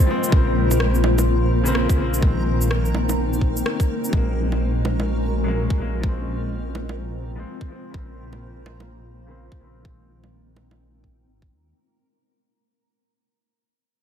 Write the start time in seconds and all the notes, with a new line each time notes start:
Already playing: F3 G#3 A#3 C4 F4 A#4 C5
0.06 F3 G#3
0.11 C4
0.24 shaker
0.28 A#1 C#3 A#3, kick
0.33 A#3 C4
0.71 low bongo, shaker
0.80 cross-stick
0.95 shaker
1.04 low bongo
1.18 low bongo, shaker
1.64 C#3 A#3 C4, shaker
1.75 cross-stick
1.90 kick, shaker
1.96 A#1 C#3 A#3
2.00 C4
2.14 shaker
2.18 D#3 G#3 D#4
2.22 G#3 C4 C5, kick
2.26 C4
2.46 A#1
2.61 shaker
2.71 cross-stick
2.85 shaker
2.95 low bongo
3.09 low bongo, shaker
3.18 A#1
3.33 shaker
3.41 A#1, kick
3.57 shaker
3.66 cross-stick
3.80 kick, shaker
4.04 shaker
4.09 A#1 F#3, kick
4.13 G#3 A#3 C#4 F#4 A#4
4.52 low bongo
4.85 low bongo
5.00 low bongo
5.44 F#3 G#3
5.48 A#3
5.70 kick
5.78 A#1 F#3 G#3 A#3
6.00 F3, kick
6.04 G#3 C4 F4 C5
6.28 A#1
6.75 low bongo
6.89 low bongo
7.35 F3 G#3 C4
7.61 kick
7.68 F3 G#3 C4
7.90 A#1 C#3 A#3
7.94 A#3 C4, kick
8.33 low bongo
8.66 low bongo
8.80 low bongo
9.26 C#3 A#3
9.31 C4
9.52 kick
9.60 A#1 C#3 A#3 C4
9.81 D#3, kick
9.86 G#3 C4 D#4
9.90 C4
10.09 A#1
10.24 low bongo
10.56 low bongo
10.71 low bongo
11.04 kick
11.28 G#1
11.42 kick
11.52 D#2